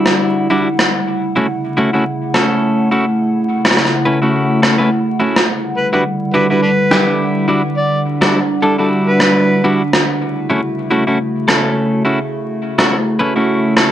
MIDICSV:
0, 0, Header, 1, 5, 480
1, 0, Start_track
1, 0, Tempo, 571429
1, 767, Time_signature, 4, 2, 24, 8
1, 11690, End_track
2, 0, Start_track
2, 0, Title_t, "Harmonica"
2, 0, Program_c, 0, 22
2, 4848, Note_on_c, 0, 71, 77
2, 4935, Note_off_c, 0, 71, 0
2, 4984, Note_on_c, 0, 71, 67
2, 5050, Note_off_c, 0, 71, 0
2, 5325, Note_on_c, 0, 71, 83
2, 5413, Note_off_c, 0, 71, 0
2, 5465, Note_on_c, 0, 71, 71
2, 5530, Note_off_c, 0, 71, 0
2, 5561, Note_on_c, 0, 62, 61
2, 5561, Note_on_c, 0, 71, 87
2, 5631, Note_off_c, 0, 62, 0
2, 6044, Note_off_c, 0, 71, 0
2, 6527, Note_on_c, 0, 74, 80
2, 6720, Note_off_c, 0, 74, 0
2, 7251, Note_on_c, 0, 69, 84
2, 7336, Note_off_c, 0, 69, 0
2, 7386, Note_on_c, 0, 69, 68
2, 7451, Note_off_c, 0, 69, 0
2, 7624, Note_on_c, 0, 71, 90
2, 8104, Note_off_c, 0, 71, 0
2, 11690, End_track
3, 0, Start_track
3, 0, Title_t, "Clean electric guitar"
3, 0, Program_c, 1, 27
3, 0, Note_on_c, 1, 55, 55
3, 0, Note_on_c, 1, 62, 61
3, 0, Note_on_c, 1, 64, 67
3, 0, Note_on_c, 1, 66, 71
3, 392, Note_off_c, 1, 55, 0
3, 392, Note_off_c, 1, 62, 0
3, 392, Note_off_c, 1, 64, 0
3, 392, Note_off_c, 1, 66, 0
3, 420, Note_on_c, 1, 64, 87
3, 424, Note_on_c, 1, 66, 87
3, 429, Note_on_c, 1, 62, 80
3, 433, Note_on_c, 1, 55, 83
3, 567, Note_off_c, 1, 55, 0
3, 567, Note_off_c, 1, 62, 0
3, 567, Note_off_c, 1, 64, 0
3, 567, Note_off_c, 1, 66, 0
3, 1141, Note_on_c, 1, 64, 64
3, 1147, Note_on_c, 1, 66, 81
3, 1151, Note_on_c, 1, 61, 62
3, 1156, Note_on_c, 1, 57, 70
3, 1228, Note_off_c, 1, 57, 0
3, 1228, Note_off_c, 1, 61, 0
3, 1228, Note_off_c, 1, 64, 0
3, 1228, Note_off_c, 1, 66, 0
3, 1487, Note_on_c, 1, 64, 67
3, 1493, Note_on_c, 1, 66, 83
3, 1498, Note_on_c, 1, 61, 64
3, 1501, Note_on_c, 1, 57, 73
3, 1593, Note_off_c, 1, 57, 0
3, 1593, Note_off_c, 1, 61, 0
3, 1593, Note_off_c, 1, 64, 0
3, 1593, Note_off_c, 1, 66, 0
3, 1624, Note_on_c, 1, 64, 67
3, 1629, Note_on_c, 1, 66, 78
3, 1632, Note_on_c, 1, 61, 62
3, 1636, Note_on_c, 1, 57, 64
3, 1709, Note_off_c, 1, 57, 0
3, 1709, Note_off_c, 1, 61, 0
3, 1709, Note_off_c, 1, 64, 0
3, 1709, Note_off_c, 1, 66, 0
3, 1969, Note_on_c, 1, 69, 90
3, 1973, Note_on_c, 1, 64, 69
3, 1976, Note_on_c, 1, 61, 74
3, 1981, Note_on_c, 1, 57, 62
3, 2424, Note_off_c, 1, 69, 0
3, 2425, Note_off_c, 1, 57, 0
3, 2425, Note_off_c, 1, 61, 0
3, 2425, Note_off_c, 1, 64, 0
3, 2447, Note_on_c, 1, 64, 73
3, 2450, Note_on_c, 1, 66, 84
3, 2453, Note_on_c, 1, 61, 68
3, 2456, Note_on_c, 1, 57, 66
3, 2558, Note_off_c, 1, 57, 0
3, 2558, Note_off_c, 1, 61, 0
3, 2558, Note_off_c, 1, 64, 0
3, 2558, Note_off_c, 1, 66, 0
3, 3065, Note_on_c, 1, 64, 67
3, 3068, Note_on_c, 1, 66, 71
3, 3072, Note_on_c, 1, 61, 56
3, 3077, Note_on_c, 1, 57, 60
3, 3209, Note_off_c, 1, 57, 0
3, 3209, Note_off_c, 1, 61, 0
3, 3209, Note_off_c, 1, 64, 0
3, 3209, Note_off_c, 1, 66, 0
3, 3404, Note_on_c, 1, 71, 72
3, 3407, Note_on_c, 1, 64, 69
3, 3411, Note_on_c, 1, 61, 57
3, 3418, Note_on_c, 1, 57, 61
3, 3517, Note_off_c, 1, 57, 0
3, 3517, Note_off_c, 1, 61, 0
3, 3517, Note_off_c, 1, 64, 0
3, 3517, Note_off_c, 1, 71, 0
3, 3542, Note_on_c, 1, 64, 66
3, 3546, Note_on_c, 1, 66, 72
3, 3550, Note_on_c, 1, 61, 61
3, 3553, Note_on_c, 1, 57, 60
3, 3867, Note_off_c, 1, 57, 0
3, 3867, Note_off_c, 1, 61, 0
3, 3867, Note_off_c, 1, 64, 0
3, 3867, Note_off_c, 1, 66, 0
3, 3883, Note_on_c, 1, 69, 67
3, 3887, Note_on_c, 1, 64, 57
3, 3892, Note_on_c, 1, 61, 58
3, 3897, Note_on_c, 1, 57, 57
3, 3996, Note_off_c, 1, 64, 0
3, 3997, Note_off_c, 1, 57, 0
3, 3997, Note_off_c, 1, 61, 0
3, 3997, Note_off_c, 1, 69, 0
3, 4018, Note_on_c, 1, 71, 98
3, 4024, Note_on_c, 1, 64, 77
3, 4028, Note_on_c, 1, 61, 73
3, 4033, Note_on_c, 1, 57, 85
3, 4107, Note_off_c, 1, 57, 0
3, 4107, Note_off_c, 1, 61, 0
3, 4107, Note_off_c, 1, 64, 0
3, 4107, Note_off_c, 1, 71, 0
3, 4365, Note_on_c, 1, 64, 64
3, 4369, Note_on_c, 1, 66, 70
3, 4375, Note_on_c, 1, 61, 54
3, 4380, Note_on_c, 1, 57, 53
3, 4534, Note_off_c, 1, 57, 0
3, 4534, Note_off_c, 1, 61, 0
3, 4534, Note_off_c, 1, 64, 0
3, 4534, Note_off_c, 1, 66, 0
3, 4980, Note_on_c, 1, 64, 65
3, 4984, Note_on_c, 1, 66, 77
3, 4991, Note_on_c, 1, 62, 58
3, 4995, Note_on_c, 1, 55, 69
3, 5067, Note_off_c, 1, 55, 0
3, 5067, Note_off_c, 1, 64, 0
3, 5067, Note_off_c, 1, 66, 0
3, 5068, Note_off_c, 1, 62, 0
3, 5325, Note_on_c, 1, 64, 74
3, 5327, Note_on_c, 1, 66, 87
3, 5332, Note_on_c, 1, 62, 63
3, 5335, Note_on_c, 1, 55, 69
3, 5430, Note_off_c, 1, 66, 0
3, 5431, Note_off_c, 1, 55, 0
3, 5431, Note_off_c, 1, 62, 0
3, 5431, Note_off_c, 1, 64, 0
3, 5460, Note_on_c, 1, 64, 68
3, 5464, Note_on_c, 1, 66, 70
3, 5469, Note_on_c, 1, 62, 60
3, 5473, Note_on_c, 1, 55, 62
3, 5547, Note_off_c, 1, 55, 0
3, 5547, Note_off_c, 1, 62, 0
3, 5547, Note_off_c, 1, 66, 0
3, 5548, Note_off_c, 1, 64, 0
3, 5806, Note_on_c, 1, 64, 73
3, 5811, Note_on_c, 1, 67, 80
3, 5814, Note_on_c, 1, 62, 60
3, 5818, Note_on_c, 1, 55, 64
3, 6263, Note_off_c, 1, 55, 0
3, 6263, Note_off_c, 1, 62, 0
3, 6263, Note_off_c, 1, 64, 0
3, 6264, Note_off_c, 1, 67, 0
3, 6282, Note_on_c, 1, 64, 74
3, 6287, Note_on_c, 1, 66, 76
3, 6290, Note_on_c, 1, 62, 69
3, 6297, Note_on_c, 1, 55, 71
3, 6396, Note_off_c, 1, 62, 0
3, 6396, Note_off_c, 1, 64, 0
3, 6396, Note_off_c, 1, 66, 0
3, 6397, Note_off_c, 1, 55, 0
3, 6899, Note_on_c, 1, 64, 63
3, 6903, Note_on_c, 1, 66, 75
3, 6907, Note_on_c, 1, 62, 59
3, 6911, Note_on_c, 1, 55, 62
3, 7046, Note_off_c, 1, 55, 0
3, 7046, Note_off_c, 1, 62, 0
3, 7046, Note_off_c, 1, 64, 0
3, 7047, Note_off_c, 1, 66, 0
3, 7244, Note_on_c, 1, 69, 82
3, 7247, Note_on_c, 1, 64, 66
3, 7251, Note_on_c, 1, 62, 60
3, 7255, Note_on_c, 1, 55, 61
3, 7357, Note_off_c, 1, 55, 0
3, 7357, Note_off_c, 1, 62, 0
3, 7357, Note_off_c, 1, 64, 0
3, 7357, Note_off_c, 1, 69, 0
3, 7379, Note_on_c, 1, 64, 71
3, 7384, Note_on_c, 1, 66, 78
3, 7387, Note_on_c, 1, 62, 59
3, 7393, Note_on_c, 1, 55, 67
3, 8070, Note_off_c, 1, 55, 0
3, 8070, Note_off_c, 1, 62, 0
3, 8070, Note_off_c, 1, 66, 0
3, 8071, Note_off_c, 1, 64, 0
3, 8097, Note_on_c, 1, 64, 85
3, 8101, Note_on_c, 1, 66, 101
3, 8104, Note_on_c, 1, 62, 77
3, 8106, Note_on_c, 1, 55, 90
3, 8245, Note_off_c, 1, 55, 0
3, 8245, Note_off_c, 1, 64, 0
3, 8245, Note_off_c, 1, 66, 0
3, 8246, Note_off_c, 1, 62, 0
3, 8817, Note_on_c, 1, 64, 66
3, 8822, Note_on_c, 1, 66, 77
3, 8826, Note_on_c, 1, 61, 62
3, 8831, Note_on_c, 1, 57, 61
3, 8905, Note_off_c, 1, 57, 0
3, 8906, Note_off_c, 1, 61, 0
3, 8906, Note_off_c, 1, 64, 0
3, 8906, Note_off_c, 1, 66, 0
3, 9161, Note_on_c, 1, 64, 74
3, 9165, Note_on_c, 1, 66, 83
3, 9170, Note_on_c, 1, 61, 68
3, 9172, Note_on_c, 1, 57, 66
3, 9269, Note_off_c, 1, 57, 0
3, 9269, Note_off_c, 1, 64, 0
3, 9269, Note_off_c, 1, 66, 0
3, 9270, Note_off_c, 1, 61, 0
3, 9300, Note_on_c, 1, 64, 66
3, 9301, Note_on_c, 1, 66, 69
3, 9307, Note_on_c, 1, 61, 63
3, 9310, Note_on_c, 1, 57, 64
3, 9386, Note_off_c, 1, 57, 0
3, 9386, Note_off_c, 1, 66, 0
3, 9387, Note_off_c, 1, 61, 0
3, 9387, Note_off_c, 1, 64, 0
3, 9641, Note_on_c, 1, 69, 88
3, 9645, Note_on_c, 1, 64, 67
3, 9648, Note_on_c, 1, 61, 66
3, 9652, Note_on_c, 1, 57, 73
3, 10101, Note_off_c, 1, 57, 0
3, 10101, Note_off_c, 1, 61, 0
3, 10101, Note_off_c, 1, 64, 0
3, 10101, Note_off_c, 1, 69, 0
3, 10120, Note_on_c, 1, 64, 73
3, 10124, Note_on_c, 1, 66, 87
3, 10128, Note_on_c, 1, 61, 70
3, 10131, Note_on_c, 1, 57, 67
3, 10235, Note_off_c, 1, 57, 0
3, 10235, Note_off_c, 1, 61, 0
3, 10235, Note_off_c, 1, 64, 0
3, 10235, Note_off_c, 1, 66, 0
3, 10737, Note_on_c, 1, 64, 69
3, 10743, Note_on_c, 1, 66, 84
3, 10747, Note_on_c, 1, 61, 67
3, 10752, Note_on_c, 1, 57, 60
3, 10886, Note_off_c, 1, 57, 0
3, 10886, Note_off_c, 1, 61, 0
3, 10886, Note_off_c, 1, 64, 0
3, 10886, Note_off_c, 1, 66, 0
3, 11081, Note_on_c, 1, 71, 75
3, 11086, Note_on_c, 1, 64, 65
3, 11091, Note_on_c, 1, 61, 59
3, 11096, Note_on_c, 1, 57, 69
3, 11196, Note_off_c, 1, 61, 0
3, 11196, Note_off_c, 1, 64, 0
3, 11196, Note_off_c, 1, 71, 0
3, 11197, Note_off_c, 1, 57, 0
3, 11220, Note_on_c, 1, 64, 71
3, 11224, Note_on_c, 1, 66, 69
3, 11229, Note_on_c, 1, 61, 61
3, 11230, Note_on_c, 1, 57, 65
3, 11546, Note_off_c, 1, 57, 0
3, 11546, Note_off_c, 1, 64, 0
3, 11546, Note_off_c, 1, 66, 0
3, 11547, Note_off_c, 1, 61, 0
3, 11562, Note_on_c, 1, 69, 75
3, 11566, Note_on_c, 1, 64, 66
3, 11570, Note_on_c, 1, 61, 55
3, 11574, Note_on_c, 1, 57, 62
3, 11676, Note_off_c, 1, 57, 0
3, 11676, Note_off_c, 1, 61, 0
3, 11676, Note_off_c, 1, 64, 0
3, 11676, Note_off_c, 1, 69, 0
3, 11690, End_track
4, 0, Start_track
4, 0, Title_t, "Ambient pad"
4, 0, Program_c, 2, 92
4, 0, Note_on_c, 2, 50, 77
4, 0, Note_on_c, 2, 55, 69
4, 0, Note_on_c, 2, 64, 71
4, 0, Note_on_c, 2, 78, 86
4, 734, Note_off_c, 2, 55, 0
4, 735, Note_off_c, 2, 50, 0
4, 770, Note_on_c, 2, 49, 73
4, 773, Note_on_c, 2, 57, 69
4, 4575, Note_off_c, 2, 49, 0
4, 4577, Note_off_c, 2, 57, 0
4, 4612, Note_on_c, 2, 50, 76
4, 4612, Note_on_c, 2, 55, 71
4, 6494, Note_off_c, 2, 64, 0
4, 6526, Note_on_c, 2, 62, 71
4, 8416, Note_off_c, 2, 50, 0
4, 8416, Note_off_c, 2, 55, 0
4, 8416, Note_off_c, 2, 78, 0
4, 8427, Note_off_c, 2, 62, 0
4, 8455, Note_on_c, 2, 49, 77
4, 8455, Note_on_c, 2, 66, 86
4, 8456, Note_on_c, 2, 64, 70
4, 8457, Note_on_c, 2, 57, 73
4, 11690, Note_off_c, 2, 49, 0
4, 11690, Note_off_c, 2, 57, 0
4, 11690, Note_off_c, 2, 64, 0
4, 11690, Note_off_c, 2, 66, 0
4, 11690, End_track
5, 0, Start_track
5, 0, Title_t, "Drums"
5, 48, Note_on_c, 9, 37, 35
5, 132, Note_off_c, 9, 37, 0
5, 663, Note_on_c, 9, 37, 37
5, 747, Note_off_c, 9, 37, 0
5, 1968, Note_on_c, 9, 37, 33
5, 2052, Note_off_c, 9, 37, 0
5, 3065, Note_on_c, 9, 37, 42
5, 3116, Note_off_c, 9, 37, 0
5, 3116, Note_on_c, 9, 37, 34
5, 3167, Note_off_c, 9, 37, 0
5, 3167, Note_on_c, 9, 37, 30
5, 3236, Note_off_c, 9, 37, 0
5, 3236, Note_on_c, 9, 37, 23
5, 3320, Note_off_c, 9, 37, 0
5, 3890, Note_on_c, 9, 37, 35
5, 3974, Note_off_c, 9, 37, 0
5, 4506, Note_on_c, 9, 37, 35
5, 4590, Note_off_c, 9, 37, 0
5, 5808, Note_on_c, 9, 37, 35
5, 5892, Note_off_c, 9, 37, 0
5, 6903, Note_on_c, 9, 37, 47
5, 6987, Note_off_c, 9, 37, 0
5, 7728, Note_on_c, 9, 37, 37
5, 7812, Note_off_c, 9, 37, 0
5, 8344, Note_on_c, 9, 37, 36
5, 8428, Note_off_c, 9, 37, 0
5, 9647, Note_on_c, 9, 37, 39
5, 9731, Note_off_c, 9, 37, 0
5, 10740, Note_on_c, 9, 37, 52
5, 10824, Note_off_c, 9, 37, 0
5, 11564, Note_on_c, 9, 37, 39
5, 11648, Note_off_c, 9, 37, 0
5, 11690, End_track
0, 0, End_of_file